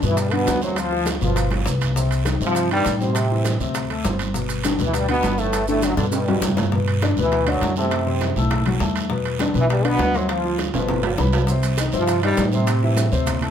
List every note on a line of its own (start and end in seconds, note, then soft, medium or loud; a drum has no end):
0.02 0.44 G2 medium
0.02 0.27 B2 medium
0.02 0.28 B3 medium
0.02 short guiro medium
0.02 maracas soft
0.08 0.17 E3 medium
0.08 0.18 E4 medium
0.17 0.32 G2 medium
0.17 0.32 G3 medium
0.17 high bongo medium
0.17 high conga soft
0.17 high timbale medium
0.17 long guiro medium
0.17 maracas medium
0.31 0.63 B2 medium
0.31 0.57 D3 medium
0.31 0.62 B3 loud
0.31 0.58 D4 medium
0.31 high bongo soft
0.31 high conga soft
0.31 high timbale medium
0.47 1.16 D2 loud
0.47 high bongo medium
0.47 low bongo medium
0.47 high conga medium
0.47 high timbale medium
0.47 low timbale medium
0.47 short guiro medium
0.47 maracas medium
0.61 0.77 F#2 medium
0.61 0.76 F#3 medium
0.61 0.87 C4 medium
0.61 0.87 C5 medium
0.61 high bongo soft
0.61 high conga medium
0.61 short guiro medium
0.61 maracas soft
0.76 1.07 F3 medium
0.76 1.08 F4 medium
0.76 high bongo medium
0.76 high conga soft
0.76 high timbale medium
0.76 long guiro medium
0.76 maracas medium
0.91 1.17 F3 medium
0.91 1.17 F4 medium
0.91 high bongo soft
0.91 high conga soft
1.06 high bongo medium
1.06 high conga medium
1.06 high timbale medium
1.06 short guiro medium
1.06 maracas medium
1.20 1.63 G1 medium
1.20 1.46 B2 medium
1.20 1.51 F3 medium
1.20 1.46 B3 medium
1.20 1.50 F4 medium
1.20 high conga soft
1.20 short guiro medium
1.20 maracas soft
1.36 high bongo medium
1.36 high conga soft
1.36 high timbale medium
1.36 long guiro medium
1.36 maracas medium
1.51 1.64 F3 medium
1.51 1.64 F4 medium
1.51 high bongo soft
1.51 high conga medium
1.51 high timbale medium
1.66 2.35 C2 medium
1.66 1.91 B3 medium
1.66 1.91 B4 medium
1.66 high bongo medium
1.66 low bongo medium
1.66 short guiro medium
1.66 maracas medium
1.81 low conga medium
1.81 high timbale medium
1.81 short guiro medium
1.81 maracas soft
1.96 2.21 C3 medium
1.96 2.21 C4 medium
1.96 high bongo medium
1.96 high conga soft
1.96 long guiro medium
1.96 maracas medium
2.11 high bongo soft
2.11 high timbale medium
2.11 maracas medium
2.25 2.38 D#3 medium
2.25 2.38 D#4 medium
2.25 high bongo medium
2.25 high conga medium
2.25 high timbale medium
2.25 short guiro medium
2.25 maracas medium
2.40 2.82 G2 medium
2.40 2.66 C3 medium
2.40 2.66 C4 medium
2.40 short guiro medium
2.40 maracas soft
2.46 2.69 F3 medium
2.46 2.69 F4 medium
2.55 high bongo medium
2.55 high timbale medium
2.55 long guiro medium
2.55 maracas medium
2.70 2.94 G2 medium
2.70 2.95 D#3 medium
2.70 2.94 G3 loud
2.70 2.95 D#4 medium
2.70 high bongo soft
2.70 high conga soft
2.70 high timbale medium
2.85 3.55 A2 medium
2.85 high bongo medium
2.85 low bongo medium
2.85 high conga medium
2.85 high timbale medium
2.85 short guiro medium
2.85 maracas medium
3.00 3.56 C3 medium
3.00 3.25 C4 medium
3.00 3.57 C4 medium
3.00 3.26 C5 medium
3.00 high bongo soft
3.00 high conga medium
3.00 short guiro medium
3.00 maracas soft
3.15 high bongo medium
3.15 high conga soft
3.15 high timbale medium
3.15 long guiro medium
3.15 maracas medium
3.30 3.55 E3 medium
3.30 3.55 E4 medium
3.30 high bongo soft
3.30 high conga soft
3.45 high bongo medium
3.45 high conga loud
3.45 high timbale medium
3.45 short guiro medium
3.45 maracas medium
3.60 4.01 D2 medium
3.60 3.85 C3 medium
3.60 3.85 C4 medium
3.60 high conga soft
3.60 short guiro medium
3.60 maracas soft
3.75 high bongo medium
3.75 high conga soft
3.75 high timbale medium
3.75 long guiro medium
3.75 maracas medium
3.90 4.02 A3 medium
3.90 4.02 A4 medium
3.90 high bongo soft
3.90 high conga soft
3.90 high timbale medium
4.04 4.74 G1 medium
4.04 4.29 C4 medium
4.04 4.30 C5 medium
4.04 high bongo medium
4.04 low bongo medium
4.04 high conga medium
4.04 low timbale medium
4.04 short guiro medium
4.04 maracas medium
4.19 high conga medium
4.19 high timbale medium
4.19 short guiro medium
4.19 maracas soft
4.34 4.59 B2 medium
4.34 4.59 B3 medium
4.34 high bongo medium
4.34 high conga soft
4.34 long guiro medium
4.34 maracas medium
4.49 high bongo soft
4.49 high conga soft
4.49 high timbale medium
4.49 maracas medium
4.64 4.77 D3 medium
4.64 4.77 D4 medium
4.64 high bongo medium
4.64 high conga medium
4.64 high timbale medium
4.64 short guiro medium
4.64 maracas medium
4.79 5.20 D2 medium
4.79 5.03 B2 medium
4.79 5.04 B3 medium
4.79 short guiro medium
4.79 maracas soft
4.85 4.94 E3 medium
4.85 4.94 E4 medium
4.93 5.09 G2 medium
4.93 5.09 G3 loud
4.93 high bongo medium
4.93 high conga soft
4.93 high timbale medium
4.93 long guiro medium
4.93 maracas medium
5.09 5.37 B2 medium
5.09 5.33 D3 medium
5.09 5.37 B3 loud
5.09 5.33 D4 medium
5.09 high bongo soft
5.09 high conga soft
5.09 high timbale medium
5.23 5.92 G1 medium
5.23 high bongo medium
5.23 low bongo medium
5.23 high conga medium
5.23 high timbale medium
5.23 low timbale medium
5.23 short guiro medium
5.23 maracas medium
5.38 5.67 A2 medium
5.38 5.68 A3 loud
5.38 5.63 B3 medium
5.38 5.63 B4 medium
5.38 high bongo soft
5.38 high conga medium
5.38 short guiro medium
5.38 maracas soft
5.53 high bongo medium
5.53 high conga soft
5.53 high timbale medium
5.53 long guiro medium
5.53 maracas medium
5.68 5.82 A2 medium
5.68 5.93 D3 medium
5.68 5.82 A3 medium
5.68 5.93 D4 medium
5.68 high bongo soft
5.68 high conga soft
5.68 maracas medium
5.82 5.99 F#2 medium
5.82 5.99 F#3 medium
5.82 high bongo medium
5.82 high conga medium
5.82 high timbale medium
5.82 short guiro medium
5.82 maracas medium
5.97 6.39 G2 medium
5.97 6.22 B2 medium
5.97 6.05 D3 medium
5.97 6.23 B3 medium
5.97 6.04 D4 medium
5.97 high bongo medium
5.97 high conga soft
5.97 short guiro medium
5.97 maracas soft
6.12 6.54 G2 medium
6.12 6.54 G3 medium
6.12 high bongo medium
6.12 high conga soft
6.12 high timbale medium
6.12 long guiro medium
6.12 maracas medium
6.28 6.40 F#3 medium
6.28 6.40 F#4 medium
6.28 high conga medium
6.28 high timbale medium
6.38 7.11 G2 loud
6.38 high conga medium
6.38 maracas medium
6.42 6.68 B3 medium
6.42 6.68 B4 medium
6.42 low bongo medium
6.42 low timbale medium
6.42 short guiro medium
6.48 low conga medium
6.57 low bongo loud
6.57 low conga medium
6.57 low timbale medium
6.57 short guiro medium
6.57 maracas soft
6.72 6.97 B2 medium
6.72 6.97 B3 medium
6.72 6.98 B4 medium
6.72 high bongo medium
6.72 high conga soft
6.72 long guiro medium
6.87 high bongo soft
6.87 high conga soft
6.87 high timbale medium
7.02 7.15 D3 medium
7.02 7.15 D4 medium
7.02 7.15 D5 medium
7.02 high bongo medium
7.02 high conga medium
7.02 high timbale medium
7.02 short guiro medium
7.17 7.58 D2 medium
7.17 7.42 B2 medium
7.17 7.42 B3 medium
7.17 7.43 B4 medium
7.17 short guiro medium
7.22 7.45 E3 medium
7.22 7.45 E4 medium
7.32 high bongo medium
7.32 high conga soft
7.32 high timbale medium
7.32 long guiro medium
7.46 7.72 F#2 medium
7.46 7.71 D3 medium
7.46 7.72 F#3 loud
7.46 7.72 D4 medium
7.46 7.72 D5 medium
7.46 high bongo soft
7.46 high conga soft
7.46 high timbale loud
7.61 8.30 F#2 loud
7.61 high bongo medium
7.61 low bongo medium
7.61 high conga medium
7.61 high timbale medium
7.61 short guiro medium
7.76 8.33 C3 medium
7.76 8.01 A3 medium
7.76 8.32 C4 medium
7.76 8.01 A4 medium
7.76 8.01 A5 medium
7.76 high bongo soft
7.76 high conga medium
7.76 short guiro medium
7.91 high bongo medium
7.91 high conga soft
7.91 high timbale medium
7.91 long guiro medium
8.06 8.31 C3 medium
8.06 8.31 C4 medium
8.06 8.31 C5 medium
8.06 high bongo soft
8.06 high conga soft
8.21 high bongo medium
8.21 high conga medium
8.21 high timbale medium
8.21 short guiro medium
8.36 8.78 B1 medium
8.36 8.61 A2 medium
8.36 8.61 A3 medium
8.36 8.61 A4 medium
8.36 high conga soft
8.36 short guiro medium
8.50 high bongo medium
8.50 high conga soft
8.50 low conga medium
8.50 high timbale medium
8.50 long guiro medium
8.65 8.78 F#3 medium
8.65 8.78 F#4 medium
8.65 8.79 F#5 medium
8.65 high bongo soft
8.65 high conga soft
8.65 low conga medium
8.65 high timbale medium
8.79 9.49 E2 loud
8.79 9.05 A3 medium
8.79 9.05 A4 medium
8.79 9.05 A5 medium
8.79 high bongo medium
8.79 low bongo medium
8.79 high conga medium
8.79 short guiro medium
8.96 high conga medium
8.96 high timbale medium
8.96 short guiro medium
9.10 9.35 B2 medium
9.10 9.35 B3 medium
9.10 9.35 B4 medium
9.10 high bongo medium
9.10 high conga soft
9.10 long guiro medium
9.25 high bongo soft
9.25 high conga soft
9.25 high timbale medium
9.39 9.53 D3 medium
9.39 9.53 D4 medium
9.39 9.53 D5 medium
9.39 high bongo medium
9.39 high conga loud
9.39 high timbale medium
9.39 short guiro medium
9.54 9.96 B1 medium
9.54 9.79 B2 medium
9.54 9.79 B3 medium
9.54 9.79 B4 medium
9.54 short guiro medium
9.61 9.65 E3 medium
9.61 9.65 E4 medium
9.70 9.84 G2 medium
9.70 9.85 G3 loud
9.70 high bongo medium
9.70 high conga soft
9.70 high timbale medium
9.70 long guiro medium
9.85 10.15 B2 medium
9.85 10.09 D3 medium
9.85 10.15 B3 loud
9.85 10.09 D4 medium
9.85 10.09 D5 medium
9.85 high bongo soft
9.85 high conga soft
9.85 high timbale medium
9.99 10.68 D2 medium
9.99 high bongo medium
9.99 low bongo medium
9.99 high conga medium
9.99 high timbale medium
9.99 low timbale medium
9.99 short guiro medium
10.14 10.30 F#2 medium
10.14 10.31 F#3 medium
10.14 10.39 C4 medium
10.14 10.39 C5 medium
10.14 10.39 C6 medium
10.14 high bongo soft
10.14 high conga medium
10.14 short guiro medium
10.29 10.58 F3 medium
10.29 10.57 F4 medium
10.29 high bongo medium
10.29 high conga soft
10.29 high timbale medium
10.29 long guiro medium
10.44 10.69 F3 medium
10.44 10.69 F4 medium
10.44 10.69 F5 medium
10.44 high bongo soft
10.44 high conga soft
10.59 high bongo medium
10.59 high conga medium
10.59 high timbale medium
10.59 short guiro medium
10.74 11.16 G1 medium
10.74 10.98 B2 medium
10.74 11.02 F3 medium
10.74 10.99 B3 medium
10.74 11.02 F4 medium
10.74 10.99 B4 medium
10.74 high conga soft
10.74 high timbale medium
10.74 short guiro medium
10.89 high bongo medium
10.89 high conga soft
10.89 low conga medium
10.89 high timbale medium
10.89 long guiro medium
11.03 11.16 F3 medium
11.03 11.16 F4 medium
11.03 11.17 F5 medium
11.03 high bongo soft
11.03 high conga soft
11.03 low timbale medium
11.18 11.87 C2 loud
11.18 11.43 B3 medium
11.18 11.43 B4 medium
11.18 11.44 B5 medium
11.18 high bongo medium
11.18 low bongo medium
11.18 high conga medium
11.18 short guiro medium
11.33 low timbale medium
11.33 short guiro medium
11.47 11.73 C3 medium
11.47 11.73 C4 medium
11.47 11.73 C5 medium
11.47 high bongo medium
11.47 high conga soft
11.47 long guiro medium
11.47 maracas medium
11.63 high bongo soft
11.63 high conga soft
11.63 high timbale medium
11.63 maracas medium
11.77 11.91 D#3 medium
11.77 11.91 D#4 medium
11.77 11.91 D#5 medium
11.77 high bongo medium
11.77 high conga medium
11.77 high timbale medium
11.77 short guiro medium
11.77 maracas medium
11.92 12.35 G2 medium
11.92 12.17 C3 medium
11.92 12.18 C4 medium
11.92 12.18 C5 medium
11.92 short guiro medium
11.92 maracas soft
11.98 12.22 F3 medium
11.98 12.21 F4 medium
12.07 high bongo medium
12.07 high conga soft
12.07 high timbale medium
12.07 long guiro medium
12.07 maracas medium
12.23 12.46 G2 medium
12.23 12.48 D#3 medium
12.23 12.46 G3 loud
12.23 12.48 D#4 medium
12.23 12.48 D#5 medium
12.23 high bongo soft
12.23 high conga soft
12.23 high timbale loud
12.37 13.07 A2 loud
12.37 high bongo medium
12.37 low bongo medium
12.37 high conga medium
12.37 high timbale medium
12.37 low timbale medium
12.37 short guiro medium
12.37 maracas medium
12.52 13.09 C3 medium
12.52 12.77 C4 medium
12.52 13.08 C4 medium
12.52 12.78 C5 medium
12.52 12.78 C6 medium
12.52 high bongo soft
12.52 high conga medium
12.52 short guiro medium
12.52 maracas soft
12.67 high bongo medium
12.67 high conga soft
12.67 high timbale medium
12.67 long guiro medium
12.67 maracas medium
12.82 13.07 E3 medium
12.82 13.07 E4 medium
12.82 13.07 E5 medium
12.82 high bongo soft
12.82 high conga soft
12.96 high bongo medium
12.96 high conga medium
12.96 high timbale medium
12.96 short guiro medium
12.96 maracas medium
13.11 13.50 D2 medium
13.11 13.36 C3 medium
13.11 13.37 C4 medium
13.11 13.37 C5 medium
13.11 high conga soft
13.11 short guiro medium
13.11 maracas soft
13.26 high bongo medium
13.26 high conga soft
13.26 low conga medium
13.26 high timbale medium
13.26 long guiro medium
13.26 maracas medium
13.41 13.50 A3 medium
13.41 13.50 A4 medium
13.41 13.50 A5 medium
13.41 high bongo soft
13.41 high conga soft
13.41 low conga medium
13.41 high timbale medium